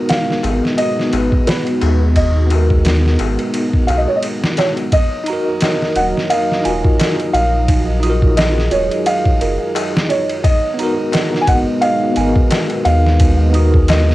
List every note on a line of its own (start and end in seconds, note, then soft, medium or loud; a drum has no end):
0.00 4.88 G#3 medium
0.00 1.07 B3 medium
0.00 4.88 B3 medium
0.00 1.08 D#4 medium
0.00 4.88 D#4 medium
0.00 1.10 F#4 medium
0.00 4.88 F#4 medium
0.00 1.11 A#4 loud
0.09 0.81 F5 medium
0.09 snare loud
0.09 ride medium
0.09 darbuka tek soft
0.30 snare soft
0.30 darbuka tek soft
0.43 0.61 G#1 medium
0.43 ride medium
0.43 darbuka tek medium
0.64 snare soft
0.64 darbuka tek soft
0.78 1.49 D#5 loud
0.78 ride medium
0.78 darbuka tek soft
0.99 snare soft
0.99 darbuka tek soft
1.09 2.45 B3 medium
1.09 2.47 D#4 medium
1.09 ride medium
1.13 1.30 G#1 medium
1.13 2.48 F#4 medium
1.13 darbuka tek medium
1.18 2.50 B4 medium
1.32 kick medium
1.32 darbuka tek soft
1.47 2.12 B4 medium
1.47 snare loud
1.47 ride medium
1.47 darbuka tek soft
1.67 ride soft
1.67 darbuka tek soft
1.81 3.17 D#2 loud
1.81 ride medium
1.81 darbuka tek medium
2.01 darbuka tek soft
2.16 3.83 D#5 medium
2.16 kick loud
2.16 ride medium
2.16 darbuka tek soft
2.37 darbuka tek soft
2.47 4.88 B3 medium
2.47 4.90 D#4 medium
2.47 ride medium
2.51 4.91 F#4 medium
2.51 darbuka tek medium
2.56 4.93 A#4 loud
2.70 kick medium
2.70 darbuka tek soft
2.85 snare loud
2.85 ride medium
2.85 darbuka tek soft
3.06 snare soft
3.06 darbuka tek soft
3.19 3.37 G#1 loud
3.19 ride medium
3.19 darbuka tek medium
3.39 ride soft
3.39 darbuka tek soft
3.54 ride medium
3.54 darbuka tek medium
3.73 kick medium
3.73 darbuka tek soft
3.87 4.06 B1 loud
3.87 3.97 F5 medium
3.87 ride medium
3.87 darbuka tek medium
3.97 4.07 D#5 medium
4.07 4.16 C#5 medium
4.07 darbuka tek soft
4.16 4.24 D#5 medium
4.23 ride medium
4.23 darbuka tek soft
4.43 snare loud
4.43 darbuka tek soft
4.57 4.66 C#5 medium
4.57 snare loud
4.57 ride medium
4.57 darbuka tek medium
4.77 ride soft
4.77 darbuka tek soft
4.92 10.40 F#3 medium
4.92 14.15 D#4 medium
4.92 7.65 A#4 medium
4.92 10.40 D#5 medium
4.92 5.92 D#5 loud
4.92 5.26 D#5 loud
4.92 kick loud
4.92 ride medium
5.24 6.60 D#4 medium
5.24 ride medium
5.28 6.63 F#4 medium
5.28 5.60 A#5 medium
5.33 6.64 A#4 loud
5.61 5.84 D#5 medium
5.61 snare loud
5.61 ride medium
5.61 darbuka tek medium
5.82 snare soft
5.96 6.13 D#1 loud
5.96 6.29 D#5 medium
5.96 6.04 F#5 medium
5.96 ride medium
6.17 snare soft
6.30 6.64 D#5 loud
6.30 7.32 F5 loud
6.30 ride medium
6.52 snare soft
6.62 6.83 D#1 medium
6.62 7.98 D#4 medium
6.62 7.99 F4 medium
6.62 6.96 G#5 loud
6.62 ride medium
6.68 8.01 F#4 medium
6.68 8.02 A#4 medium
6.84 kick medium
6.99 7.32 D#5 medium
6.99 snare loud
6.99 ride loud
6.99 darbuka tek medium
7.20 ride soft
7.33 8.69 A#1 loud
7.33 7.67 D#5 medium
7.33 8.40 F5 loud
7.33 ride medium
7.68 7.90 D#4 medium
7.68 10.42 G#4 medium
7.68 kick loud
7.68 ride medium
8.00 10.41 D#4 medium
8.00 10.43 F4 medium
8.00 8.34 D#6 medium
8.00 ride medium
8.07 10.44 F#4 medium
8.07 10.46 A#4 loud
8.22 kick medium
8.37 8.73 D#5 medium
8.37 8.59 D#5 medium
8.37 snare loud
8.37 ride medium
8.37 darbuka tek medium
8.58 snare soft
8.71 8.89 D#1 loud
8.71 9.07 C#5 medium
8.71 9.05 D#5 medium
8.71 ride medium
8.91 ride soft
9.06 9.39 D#5 loud
9.06 10.13 F5 loud
9.06 ride medium
9.25 kick medium
9.41 9.58 F#1 medium
9.41 9.73 A#4 loud
9.41 ride medium
9.75 10.07 D#5 medium
9.75 ride medium
9.75 darbuka tek medium
9.97 snare loud
10.09 10.45 C#5 medium
10.09 10.42 D#5 medium
10.09 ride medium
10.29 ride soft
10.43 14.15 G#3 medium
10.43 14.15 B3 medium
10.43 13.17 F#4 medium
10.43 11.37 D#5 loud
10.43 10.77 D#5 loud
10.43 kick loud
10.43 ride medium
10.74 12.11 B3 loud
10.74 12.13 D#4 medium
10.79 12.14 F#4 medium
10.79 11.12 A#5 medium
10.79 ride medium
10.83 12.15 A#4 loud
11.12 11.35 D#5 medium
11.12 snare loud
11.12 ride medium
11.12 darbuka tek medium
11.34 snare soft
11.41 11.47 G#5 medium
11.47 11.65 G#1 loud
11.47 11.81 D#5 medium
11.47 11.56 F#5 loud
11.47 kick medium
11.47 ride medium
11.81 12.15 D#5 loud
11.81 12.83 F5 loud
11.81 ride medium
12.12 13.49 B3 medium
12.12 13.50 D#4 medium
12.16 12.34 G#1 medium
12.16 13.51 F#4 medium
12.16 12.48 G#5 medium
12.16 ride medium
12.21 13.53 A#4 medium
12.36 kick loud
12.51 12.84 D#5 medium
12.51 snare loud
12.51 ride medium
12.51 darbuka tek medium
12.70 ride soft
12.85 14.15 D#2 loud
12.85 13.19 D#5 medium
12.85 13.92 F5 loud
12.85 ride medium
13.06 snare soft
13.19 13.42 D#4 medium
13.19 14.15 D#5 medium
13.19 kick loud
13.19 ride medium
13.50 14.15 B3 medium
13.50 14.15 D#4 medium
13.50 ride medium
13.55 14.15 F#4 medium
13.55 13.86 D#6 medium
13.59 14.15 A#4 loud
13.74 kick medium
13.88 14.15 D#5 loud
13.88 14.11 D#5 medium
13.88 snare loud
13.88 ride medium
13.88 darbuka tek medium
14.09 snare soft